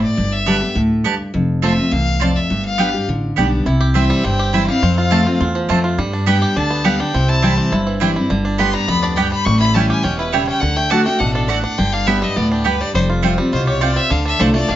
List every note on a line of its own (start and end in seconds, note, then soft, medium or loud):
0.00 0.16 A2 medium
0.00 0.34 D5 medium
0.17 0.61 G1 medium
0.17 0.73 G2 medium
0.32 0.76 E5 loud
0.46 0.61 D3 medium
0.46 0.61 G3 medium
0.46 0.56 B3 loud
0.46 0.61 B3 loud
0.46 0.56 G4 medium
0.46 0.60 G4 medium
0.46 0.56 D5 medium
0.46 0.56 A5 loud
0.61 0.76 B3 medium
0.61 0.75 G4 medium
0.75 1.19 D2 medium
0.75 1.03 A2 medium
1.04 1.33 G2 medium
1.04 1.14 B3 medium
1.04 1.14 G4 medium
1.04 1.14 D5 medium
1.04 1.14 A5 loud
1.34 1.78 F1 medium
1.34 1.89 F2 medium
1.62 1.77 F3 medium
1.62 1.77 A3 medium
1.62 1.72 C4 medium
1.62 1.78 C4 loud
1.62 1.72 F4 loud
1.62 1.76 F4 medium
1.62 1.72 C5 loud
1.62 1.94 E5 medium
1.62 1.72 A5 medium
1.77 1.92 C4 medium
1.77 1.91 F4 medium
1.91 2.36 C2 medium
1.91 2.19 E2 loud
1.91 2.23 F5 loud
2.20 2.49 F2 medium
2.20 2.30 C4 medium
2.20 2.30 F4 medium
2.20 2.30 C5 loud
2.20 2.38 D5 medium
2.20 2.30 A5 loud
2.36 2.65 E5 medium
2.50 2.94 G1 medium
2.50 3.05 G2 medium
2.65 3.05 F5 loud
2.78 2.93 G3 medium
2.78 2.88 B3 loud
2.78 2.93 B3 medium
2.78 2.94 D4 medium
2.78 2.88 G4 loud
2.78 2.93 G4 loud
2.78 2.88 D5 loud
2.78 2.88 G5 loud
2.94 3.09 D4 soft
2.94 3.08 G4 medium
3.08 3.33 A1 medium
3.08 3.64 D3 medium
3.36 3.62 B1 medium
3.36 3.65 G3 medium
3.36 3.46 B3 medium
3.36 3.65 B3 loud
3.36 3.66 D4 medium
3.36 3.46 G4 medium
3.36 3.66 G4 medium
3.36 3.46 D5 medium
3.36 3.47 G5 loud
3.66 4.09 C2 medium
3.66 4.22 C3 loud
3.66 4.07 E4 medium
3.81 4.21 G4 medium
3.94 4.23 E3 medium
3.94 4.23 G3 medium
3.94 4.04 C4 medium
3.94 4.23 C4 medium
3.94 4.23 C4 loud
3.94 4.04 E4 medium
3.94 4.24 E4 medium
3.94 4.04 C5 loud
3.94 4.26 E5 medium
3.94 4.05 G5 loud
4.10 4.50 G3 medium
4.24 4.68 G1 medium
4.24 4.80 G2 loud
4.24 4.65 C4 medium
4.24 4.56 G5 loud
4.39 4.80 G4 medium
4.53 4.67 E3 medium
4.53 4.68 G3 medium
4.53 4.62 C4 medium
4.53 4.68 C4 medium
4.53 4.63 E4 loud
4.53 4.83 E4 medium
4.53 4.67 E4 loud
4.53 4.63 C5 medium
4.53 4.67 E5 medium
4.53 4.63 G5 loud
4.67 4.83 G3 medium
4.67 4.83 C4 soft
4.67 4.82 E4 medium
4.67 4.95 F5 loud
4.82 5.26 F2 medium
4.82 5.38 F2 medium
4.82 5.23 C4 medium
4.96 5.38 F4 medium
4.96 5.37 F5 loud
5.11 5.25 F3 medium
5.11 5.52 A3 medium
5.11 5.26 A3 medium
5.11 5.20 C4 loud
5.11 5.26 C4 loud
5.11 5.20 F4 medium
5.11 5.25 F4 loud
5.11 5.21 C5 loud
5.11 5.21 A5 loud
5.26 5.67 C4 medium
5.26 5.41 C4 medium
5.26 5.40 F4 medium
5.40 5.65 E2 medium
5.40 5.68 E2 medium
5.40 5.81 F4 medium
5.55 5.96 F3 medium
5.69 5.94 F2 medium
5.69 5.97 F2 medium
5.69 5.98 A3 medium
5.69 5.78 C4 medium
5.69 5.78 F4 loud
5.69 5.79 C5 loud
5.69 5.79 A5 loud
5.84 5.98 F4 medium
5.98 6.42 G2 medium
5.98 6.54 G2 medium
5.98 6.27 G3 medium
6.13 6.54 D4 medium
6.26 6.55 G3 medium
6.26 6.85 G3 medium
6.26 6.36 B3 loud
6.26 6.55 B3 medium
6.26 6.55 D4 loud
6.26 6.36 G4 loud
6.26 6.56 G4 medium
6.26 6.36 D5 loud
6.26 6.58 G5 medium
6.26 6.36 G5 loud
6.42 7.82 G4 medium
6.56 7.00 D2 medium
6.56 7.12 D3 loud
6.56 6.97 D4 medium
6.56 6.87 A5 loud
6.70 7.11 B3 medium
6.84 6.99 G3 medium
6.84 7.43 G3 medium
6.84 6.94 B3 loud
6.84 6.99 B3 loud
6.84 7.00 D4 loud
6.84 6.94 G4 medium
6.84 6.98 G4 medium
6.84 6.94 D5 medium
6.84 7.01 F5 medium
6.84 6.94 G5 loud
7.00 7.14 D4 medium
7.00 7.15 D4 medium
7.00 7.14 G4 medium
7.00 7.30 G5 loud
7.14 7.58 C2 medium
7.14 7.69 C3 medium
7.14 7.55 C4 medium
7.29 7.70 E4 medium
7.29 7.72 A5 loud
7.42 7.71 E3 medium
7.42 7.84 G3 medium
7.42 7.71 G3 loud
7.42 7.52 C4 medium
7.42 7.71 C4 medium
7.42 7.52 E4 loud
7.42 7.72 E4 loud
7.42 7.52 C5 loud
7.42 7.52 G5 medium
7.58 7.98 C4 medium
7.72 8.15 G1 medium
7.72 8.28 G2 loud
7.72 8.13 E4 medium
7.87 8.27 E3 medium
8.00 8.15 E3 loud
8.00 8.30 G3 medium
8.00 8.16 G3 medium
8.00 8.10 C4 loud
8.00 8.16 C4 medium
8.00 8.10 E4 loud
8.00 8.15 E4 medium
8.00 8.10 C5 loud
8.00 8.10 G5 loud
8.16 8.31 C4 medium
8.16 8.30 E4 medium
8.30 8.74 G1 medium
8.30 8.86 G2 medium
8.30 8.71 D3 medium
8.45 8.85 D4 medium
8.58 8.87 G3 medium
8.58 8.68 B3 medium
8.58 8.87 B3 medium
8.58 8.87 D4 medium
8.58 8.68 G4 loud
8.58 8.88 G4 medium
8.58 8.68 D5 medium
8.58 8.69 G5 medium
8.58 8.75 C6 medium
8.73 9.14 G3 medium
8.73 8.90 A#5 loud
8.88 9.31 D2 medium
8.88 9.16 F2 medium
8.88 9.29 B3 medium
8.88 9.04 B5 loud
9.03 9.44 D4 medium
9.03 9.18 D5 medium
9.16 9.45 G2 medium
9.16 9.26 B3 medium
9.16 9.46 G4 medium
9.16 9.26 G4 medium
9.16 9.27 D5 loud
9.16 9.32 G5 loud
9.16 9.27 G5 loud
9.32 9.45 G3 medium
9.32 9.47 B5 loud
9.45 9.90 A1 loud
9.45 10.02 A2 medium
9.45 9.87 G3 medium
9.45 9.59 C#6 loud
9.60 10.01 E4 medium
9.60 9.76 B5 loud
9.74 10.03 E3 medium
9.74 10.03 G3 medium
9.74 9.84 A3 medium
9.74 10.03 C#4 medium
9.74 10.03 C#4 loud
9.74 9.84 E4 medium
9.74 10.04 E4 loud
9.74 9.85 C#5 loud
9.74 9.85 G5 loud
9.74 9.89 A5 loud
9.89 10.30 G4 medium
9.89 10.04 G#5 loud
10.03 10.48 E1 medium
10.03 10.32 B2 loud
10.03 10.45 C#4 medium
10.03 10.18 G5 loud
10.18 10.60 E4 medium
10.18 10.35 B4 medium
10.32 10.61 C#3 loud
10.32 10.62 G3 medium
10.32 10.42 A3 medium
10.32 10.42 E4 loud
10.32 10.42 C#5 loud
10.32 10.46 E5 medium
10.32 10.43 G5 loud
10.47 10.62 C#4 medium
10.47 10.62 G5 loud
10.60 11.06 D2 medium
10.60 11.03 D3 medium
10.60 10.90 D3 loud
10.60 10.78 F#5 loud
10.76 11.05 A3 medium
10.76 10.92 G5 loud
10.90 11.05 D3 medium
10.90 11.00 A3 medium
10.90 11.06 A3 loud
10.90 11.19 D4 medium
10.90 11.06 D4 medium
10.90 11.00 F#4 loud
10.90 11.04 F#4 loud
10.90 11.00 D5 loud
10.90 11.00 F#5 loud
10.90 11.04 A5 loud
11.05 11.46 A3 medium
11.05 11.20 D4 medium
11.05 11.20 F#4 medium
11.05 11.20 G5 loud
11.19 11.64 A1 medium
11.19 11.48 B2 loud
11.19 11.34 D4 medium
11.19 11.33 F#5 loud
11.34 11.48 D4 medium
11.34 11.50 A4 soft
11.48 11.77 A2 medium
11.48 11.58 A3 medium
11.48 11.62 D4 medium
11.48 11.58 F#4 loud
11.48 11.62 D5 loud
11.48 11.58 D5 medium
11.48 11.59 F#5 medium
11.63 11.78 D4 medium
11.63 11.79 F#5 loud
11.78 12.22 G1 medium
11.78 12.34 G2 medium
11.78 12.19 D3 medium
11.78 11.94 G5 loud
11.93 12.34 D4 medium
11.93 12.09 F5 loud
12.07 12.21 G3 medium
12.07 12.16 B3 medium
12.07 12.22 B3 loud
12.07 12.35 B3 medium
12.07 12.22 D4 medium
12.07 12.16 G4 loud
12.07 12.20 G4 loud
12.07 12.17 D5 medium
12.07 12.25 E5 medium
12.07 12.17 G5 loud
12.21 12.63 G3 medium
12.21 12.36 D4 medium
12.21 12.35 G4 medium
12.21 12.38 D#5 medium
12.36 12.80 D2 medium
12.36 12.64 A2 loud
12.36 12.77 B3 medium
12.36 12.51 D5 medium
12.52 12.92 D4 medium
12.52 12.67 G4 medium
12.64 12.93 G2 medium
12.64 12.74 B3 medium
12.64 12.74 G4 medium
12.64 12.95 G4 medium
12.64 12.82 B4 loud
12.64 12.74 D5 medium
12.64 12.75 G5 loud
12.80 12.94 G3 medium
12.80 12.94 D5 loud
12.94 13.38 F1 loud
12.94 13.50 F2 loud
12.94 13.36 G3 medium
12.94 13.03 C5 medium
13.10 13.50 F4 medium
13.22 13.38 F3 medium
13.22 13.38 G3 medium
13.22 13.32 A3 medium
13.22 13.64 C4 medium
13.22 13.38 C4 loud
13.22 13.32 F4 medium
13.22 13.36 F4 medium
13.22 13.32 C5 medium
13.22 13.33 G5 loud
13.38 13.79 G3 medium
13.38 13.53 C4 soft
13.38 13.52 F4 medium
13.52 13.96 C2 medium
13.52 13.80 B2 loud
13.52 13.80 F4 medium
13.52 13.66 C5 medium
13.67 14.08 G4 medium
13.67 13.83 C#5 loud
13.81 14.09 C3 medium
13.81 13.90 A3 medium
13.81 14.10 F4 medium
13.81 13.91 F4 loud
13.81 13.91 C5 medium
13.81 13.98 D5 medium
13.81 13.91 G5 medium
13.96 14.11 C4 medium
13.96 14.13 E5 loud
14.10 14.32 D2 medium
14.10 14.38 D3 medium
14.10 14.51 D3 medium
14.10 14.25 F5 loud
14.25 14.38 D4 medium
14.25 14.42 E5 loud
14.39 14.64 C2 medium
14.39 14.54 D3 medium
14.39 14.49 A3 medium
14.39 14.54 A3 loud
14.39 14.67 D4 medium
14.39 14.54 D4 medium
14.39 14.49 F4 medium
14.39 14.53 F4 loud
14.39 14.54 C5 medium
14.39 14.49 D5 loud
14.39 14.49 A5 loud
14.54 14.76 A3 medium
14.54 14.69 D4 medium
14.54 14.68 F4 medium
14.54 14.71 D5 loud
14.68 14.76 B1 medium
14.68 14.76 B2 loud
14.68 14.76 D4 medium
14.68 14.76 F5 loud